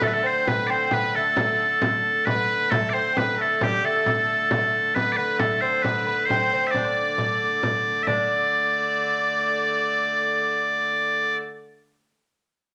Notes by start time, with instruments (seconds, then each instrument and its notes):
Already playing: hurdy-gurdy D3 A3
0.01 lute A3, bagpipes A4, shawm A4, frame drum
0.07 bagpipes B4
0.13 lute A3, shawm A4, bagpipes A4
0.23 lute C4, shawm C5, bagpipes C5
0.47 lute B3, shawm B4, bagpipes B4, frame drum
0.67 lute C4, shawm C5, bagpipes C5 D5, frame drum
0.91 lute B3, shawm B4, bagpipes B4, frame drum
1.15 lute A3, shawm A4, bagpipes A4
1.37 frame drum
1.82 frame drum
2.25 lute B3, bagpipes B4, shawm B4, frame drum
2.70 hurdy-gurdy D3 A3, lute A3, bagpipes A4, shawm A4, frame drum
2.90 shawm C5, bagpipes C5 D5
2.94 lute C4
3.16 lute B3, shawm B4, bagpipes B4, frame drum
3.39 lute A3, shawm A4, bagpipes A4, frame drum
3.61 lute G3, shawm G4, bagpipes G4, frame drum
3.83 lute A3, bagpipes A4, shawm A4
4.06 frame drum
4.51 lute A3, shawm A4, frame drum
4.73 frame drum
4.95 lute B3, bagpipes B4, shawm B4, frame drum
5.12 bagpipes D5
5.17 lute B3, bagpipes B4, shawm B4
5.39 lute A3, bagpipes A4, shawm A4, frame drum
5.61 lute C4, bagpipes C5
5.82 lute B3, bagpipes B4, shawm B4, frame drum
6.06 lute B3, shawm B4, frame drum
6.25 bagpipes C5, shawm C5
6.30 lute C4, frame drum
6.53 lute C4
6.67 bagpipes D5 E5
6.73 lute D4, shawm D5, frame drum
6.78 shawm C5
6.85 shawm D5
7.18 frame drum
7.42 frame drum
7.63 frame drum
7.85 frame drum
8.03 hurdy-gurdy D3, shawm D5, bagpipes E5
8.07 hurdy-gurdy A3, lute D4, bagpipes D5, frame drum